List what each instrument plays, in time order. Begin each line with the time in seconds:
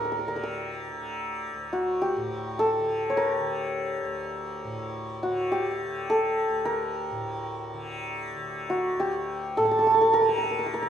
Already playing: tanpura D2 A2 D3, santur D4 D#4 G4
0.05 santur A#4
0.12 santur A#4
0.19 santur A#4
0.28 tanpura D3, santur A#4
0.36 santur A#4
0.43 santur A#4
0.92 tanpura D3
1.54 tanpura D2
1.73 santur F#4
2.02 santur G4
2.16 tanpura A2
2.59 santur A4
2.79 tanpura D3
3.10 santur C#5
3.17 santur A#4
3.40 tanpura D3
4.03 tanpura D2
4.64 tanpura A2
5.23 tanpura D3, santur F#4
5.52 santur G4
5.86 tanpura D3
6.10 santur A4
6.48 tanpura D2
6.65 santur A#4
7.11 tanpura A2
7.74 tanpura D3
8.36 tanpura D3
8.70 santur F#4
8.96 tanpura D2, santur G4
9.57 tanpura A2, santur A4
9.65 santur A4
9.71 santur A4
9.79 santur A4
9.87 santur A4
9.94 santur A4
10.01 santur A4
10.14 santur A#4
10.19 tanpura D3, santur A#4
10.29 santur A#4
10.38 santur A#4
10.44 santur A#4
10.51 santur A#4
10.59 santur A#4
10.66 santur A#4
10.74 santur A#4
10.81 tanpura D3, santur A#4